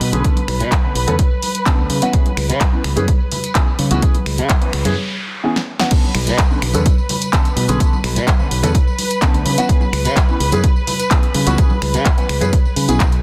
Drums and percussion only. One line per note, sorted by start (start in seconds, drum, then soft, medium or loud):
0.00 open hi-hat loud
0.00 high conga loud
0.12 closed hi-hat medium
0.12 tambourine medium
0.24 kick loud
0.24 closed hi-hat medium
0.24 tambourine medium
0.36 closed hi-hat soft
0.36 tambourine soft
0.36 high conga medium
0.48 finger snap medium
0.48 open hi-hat loud
0.60 closed hi-hat medium
0.60 tambourine medium
0.71 kick loud
0.71 clap loud
0.71 closed hi-hat medium
0.71 tambourine medium
0.71 high conga medium
0.84 tambourine soft
0.95 open hi-hat loud
1.07 closed hi-hat soft
1.07 tambourine medium
1.07 high conga medium
1.07 low conga medium
1.19 kick loud
1.19 closed hi-hat medium
1.19 tambourine medium
1.31 tambourine soft
1.42 open hi-hat loud
1.42 high conga medium
1.55 closed hi-hat medium
1.55 tambourine medium
1.66 kick loud
1.66 clap loud
1.66 closed hi-hat medium
1.66 tambourine medium
1.78 tambourine soft
1.90 open hi-hat loud
1.90 high conga medium
2.02 closed hi-hat medium
2.02 tambourine medium
2.13 kick loud
2.13 closed hi-hat medium
2.13 tambourine medium
2.26 closed hi-hat soft
2.26 tambourine soft
2.26 high conga medium
2.37 finger snap medium
2.37 open hi-hat loud
2.50 closed hi-hat medium
2.50 tambourine medium
2.61 kick loud
2.61 clap loud
2.61 closed hi-hat medium
2.61 tambourine medium
2.61 high conga medium
2.74 tambourine soft
2.84 finger snap medium
2.84 open hi-hat loud
2.96 closed hi-hat medium
2.96 tambourine medium
2.96 high conga medium
2.96 low conga medium
3.08 kick loud
3.08 closed hi-hat medium
3.08 tambourine medium
3.20 tambourine soft
3.32 open hi-hat loud
3.32 high conga medium
3.32 low conga medium
3.44 closed hi-hat medium
3.44 tambourine medium
3.55 kick loud
3.55 clap loud
3.55 closed hi-hat medium
3.67 tambourine soft
3.79 open hi-hat loud
3.79 high conga medium
3.91 closed hi-hat medium
3.91 tambourine medium
4.02 kick loud
4.02 closed hi-hat medium
4.02 tambourine medium
4.14 closed hi-hat soft
4.14 tambourine soft
4.14 high conga medium
4.26 finger snap medium
4.26 open hi-hat loud
4.37 closed hi-hat medium
4.37 tambourine medium
4.49 kick loud
4.49 clap loud
4.49 closed hi-hat medium
4.49 tambourine medium
4.49 high conga medium
4.62 closed hi-hat soft
4.62 tambourine soft
4.73 finger snap medium
4.73 open hi-hat loud
4.85 closed hi-hat medium
4.85 tambourine medium
4.85 high conga medium
4.85 low conga medium
5.56 snare medium
5.79 snare loud
5.91 kick loud
5.91 closed hi-hat medium
5.91 crash loud
5.91 tambourine medium
6.04 tambourine soft
6.04 high conga medium
6.15 finger snap medium
6.15 open hi-hat loud
6.27 closed hi-hat medium
6.27 tambourine medium
6.38 kick loud
6.38 clap loud
6.38 closed hi-hat medium
6.38 tambourine medium
6.38 high conga medium
6.51 tambourine soft
6.62 finger snap medium
6.62 open hi-hat loud
6.74 closed hi-hat medium
6.74 tambourine medium
6.74 high conga loud
6.74 low conga medium
6.86 kick loud
6.86 closed hi-hat medium
6.86 tambourine medium
6.98 tambourine soft
7.09 open hi-hat loud
7.09 high conga medium
7.09 low conga medium
7.21 closed hi-hat medium
7.21 tambourine medium
7.33 kick loud
7.33 clap loud
7.33 closed hi-hat medium
7.45 closed hi-hat soft
7.45 tambourine soft
7.57 open hi-hat loud
7.57 high conga loud
7.68 closed hi-hat medium
7.68 tambourine medium
7.80 kick loud
7.80 closed hi-hat medium
7.80 tambourine medium
7.93 tambourine soft
7.93 high conga medium
8.04 finger snap medium
8.04 open hi-hat loud
8.16 closed hi-hat medium
8.16 tambourine medium
8.27 kick loud
8.27 clap loud
8.27 closed hi-hat medium
8.27 tambourine medium
8.27 high conga medium
8.39 tambourine soft
8.51 open hi-hat loud
8.63 closed hi-hat medium
8.63 tambourine medium
8.63 high conga medium
8.63 low conga medium
8.75 kick loud
8.75 closed hi-hat medium
8.75 tambourine medium
8.88 tambourine soft
8.99 open hi-hat loud
8.99 high conga medium
9.10 closed hi-hat medium
9.10 tambourine medium
9.21 kick loud
9.21 clap loud
9.21 closed hi-hat medium
9.21 tambourine medium
9.34 closed hi-hat soft
9.34 tambourine soft
9.46 open hi-hat loud
9.46 high conga loud
9.58 closed hi-hat medium
9.58 tambourine medium
9.69 kick loud
9.69 closed hi-hat medium
9.81 tambourine soft
9.81 high conga loud
9.93 finger snap medium
9.93 open hi-hat loud
10.05 closed hi-hat medium
10.05 tambourine medium
10.16 kick loud
10.16 clap loud
10.16 closed hi-hat medium
10.16 tambourine medium
10.16 high conga medium
10.28 tambourine soft
10.40 open hi-hat loud
10.52 closed hi-hat medium
10.52 tambourine medium
10.52 high conga medium
10.52 low conga medium
10.63 kick loud
10.63 closed hi-hat medium
10.63 tambourine medium
10.76 tambourine soft
10.87 open hi-hat loud
10.87 high conga medium
10.87 low conga medium
11.00 closed hi-hat medium
11.00 tambourine medium
11.11 kick loud
11.11 clap loud
11.11 closed hi-hat medium
11.23 closed hi-hat soft
11.23 tambourine soft
11.34 open hi-hat loud
11.34 high conga loud
11.47 closed hi-hat medium
11.47 tambourine medium
11.58 kick loud
11.58 closed hi-hat medium
11.58 tambourine medium
11.70 tambourine soft
11.70 high conga loud
11.82 finger snap medium
11.82 open hi-hat loud
11.94 closed hi-hat soft
11.94 tambourine medium
12.05 kick loud
12.05 clap loud
12.05 closed hi-hat medium
12.05 tambourine medium
12.05 high conga medium
12.18 closed hi-hat soft
12.18 tambourine soft
12.29 finger snap medium
12.29 open hi-hat loud
12.41 closed hi-hat soft
12.41 tambourine medium
12.41 high conga loud
12.41 low conga medium
12.53 kick loud
12.53 closed hi-hat medium
12.53 tambourine medium
12.65 tambourine soft
12.76 open hi-hat loud
12.76 high conga medium
12.88 closed hi-hat medium
12.88 tambourine medium
13.00 kick loud
13.00 clap loud
13.00 closed hi-hat medium
13.00 tambourine medium
13.12 closed hi-hat soft
13.12 tambourine soft